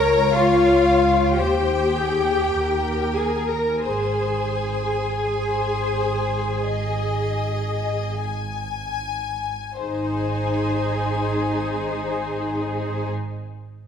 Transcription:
Already playing: C#2 A#4 C#5 A#5
0.33 F4 F5
1.37 D#2 G4 C5 G5
1.94 G#4
2.53 D#2 A#4
3.15 G#4 G#5
3.48 A#4 A#5
3.81 G#1 G#4 C5 G#5
5.24 C5
6.69 D#5
8.24 G#5
9.80 G#1 D#4 G#4 C5 G#5

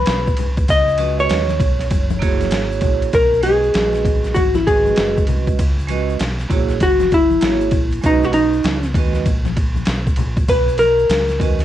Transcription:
Already playing: B4
0.06 B1, snare, hi-hat pedal, ride, shaker
0.27 kick, shaker
0.37 C2, ride, low conga, shaker
0.57 kick, ride, shaker
0.68 C#2 D#5, kick, ride, shaker
0.89 shaker
0.97 G#3 C#4 F#4 B4 D#5, ride, high conga, shaker
1.19 C#5, shaker
1.30 D#2, snare, hi-hat pedal, ride, shaker
1.48 snare, high conga, shaker
1.60 B1, kick, ride, low conga, shaker
1.79 snare, ride, shaker
1.91 F#1, kick, ride, high conga, shaker
2.10 high conga, shaker
2.19 A#3 E4 F#4 G#4 C#5, kick, ride, shaker
2.41 snare, ride, high conga, shaker
2.51 G#1, snare, hi-hat pedal, ride, shaker
2.72 shaker
2.81 A#1, kick, ride, low conga, shaker
3.02 ride, shaker
3.13 B1 A#4, kick, ride, shaker
3.33 shaker
3.41 G#3 C#4 F#4 G#4 B4 D#5, ride, high conga, shaker
3.63 shaker
3.74 A#1, snare, hi-hat pedal, ride, shaker
3.93 snare, shaker
4.05 kick, ride, low conga, shaker
4.24 snare, shaker
4.34 G#1 F#4, kick, ride, high conga, shaker
4.55 E4, snare, high conga, shaker
4.66 G#3 C#4 F#4 G#4 B4 D#5, kick, ride, shaker
4.86 high conga, shaker
4.96 F#1, snare, hi-hat pedal, ride, shaker
5.17 kick, shaker
5.27 C2, ride, low conga, shaker
5.47 kick, ride, shaker
5.59 C#2, kick, ride, shaker
5.79 shaker
5.88 G#3 C#4 F#4 B4 D#5, ride, high conga, shaker
6.09 shaker
6.19 B1, snare, hi-hat pedal, ride, shaker
6.38 snare, shaker
6.49 A#1 A#3 E4 F#4 G#4 C#5, kick, ride, low conga, shaker
6.69 snare, shaker
6.80 F#1 F#4, kick, ride, high conga, shaker
7.00 snare, high conga, shaker
7.11 E4, kick, ride, shaker
7.30 high conga, shaker
7.40 G#1 A#3 E4 F#4 G#4 C#5, snare, hi-hat pedal, ride, shaker
7.61 shaker
7.71 A#1, kick, ride, low conga, shaker
7.91 ride, shaker
8.02 B1 G#3 C#4 F#4 B4 D#5, kick, ride, shaker
8.06 D#4
8.23 F#4, shaker
8.33 D#4, ride, high conga, shaker
8.53 shaker
8.64 C#2, snare, hi-hat pedal, ride, shaker
8.83 snare, shaker
8.94 D#2 G#3 C#4 F#4 B4 D#5, kick, ride, low conga, shaker
9.13 snare, shaker
9.26 A#1, kick, ride, high conga, shaker
9.45 snare, high conga, shaker
9.57 kick, ride, shaker
9.76 high conga, shaker
9.85 B1, snare, hi-hat pedal, ride, shaker
10.07 kick, shaker
10.16 A#1, ride, low conga, shaker
10.37 kick, ride, shaker
10.48 B1 B4, kick, ride, shaker
10.68 shaker
10.78 A#4, ride, high conga, shaker
10.99 shaker
11.09 C#2, snare, hi-hat pedal, ride, shaker
11.28 snare, shaker
11.39 D#2 G#3 C#4 F#4 B4 D#5, kick, ride, low conga, shaker
11.59 snare, ride, shaker

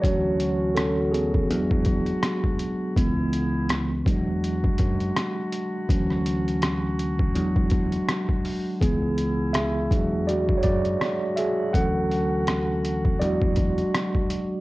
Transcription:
Already playing: D3 F#4
0.02 D2 E3 F#3 C#4 F#4 C#5, kick, closed hi-hat
0.40 closed hi-hat
0.75 C#4 A4, cross-stick, closed hi-hat
1.11 B3 G#4, closed hi-hat
1.34 kick
1.49 E2 D3 F#3 G#3 D4 F#4, closed hi-hat
1.71 kick
1.85 kick, closed hi-hat
2.06 closed hi-hat
2.23 cross-stick, closed hi-hat
2.44 kick
2.59 closed hi-hat
2.95 C#2 C#3 E3 G#3 B3 E4, kick, closed hi-hat
3.33 closed hi-hat
3.69 cross-stick, closed hi-hat
4.05 E2 D3 F#3 G#3 D4 F#4, kick, closed hi-hat
4.44 closed hi-hat
4.64 kick
4.78 F#2, kick, closed hi-hat
5.00 closed hi-hat
5.16 cross-stick, closed hi-hat
5.52 closed hi-hat
5.88 D2 E3 F#3 C#4, kick, closed hi-hat
6.10 cross-stick
6.26 closed hi-hat
6.48 closed hi-hat
6.62 cross-stick, closed hi-hat
6.99 closed hi-hat
7.19 kick
7.35 E2 D3 F#3 G#3 D4, closed hi-hat
7.56 kick
7.70 kick, closed hi-hat
7.92 closed hi-hat
8.09 cross-stick, closed hi-hat
8.29 kick
8.45 open hi-hat
8.80 C#2 C#3 E3 G#3 B3 E4 G#4, kick, closed hi-hat
9.18 closed hi-hat
9.53 G#4 E5, cross-stick, closed hi-hat
9.91 E2 D3 F#3 G#3 D4 F#4, kick, closed hi-hat
10.27 F#4 D5, closed hi-hat
10.49 kick
10.58 C#5
10.63 F#2 F#4 D5, kick, closed hi-hat
10.85 closed hi-hat
11.01 cross-stick, closed hi-hat
11.36 G#4 E5, closed hi-hat
11.73 D2 E3 F#3 C#4 A4 F#5, kick, closed hi-hat
12.11 closed hi-hat
12.47 cross-stick, closed hi-hat
12.85 closed hi-hat
13.05 kick
13.19 E2 D3 F#3 G#3 D4 F#4 D5, closed hi-hat
13.42 kick
13.56 kick, closed hi-hat
13.78 closed hi-hat
13.95 cross-stick, closed hi-hat
14.15 kick
14.30 closed hi-hat

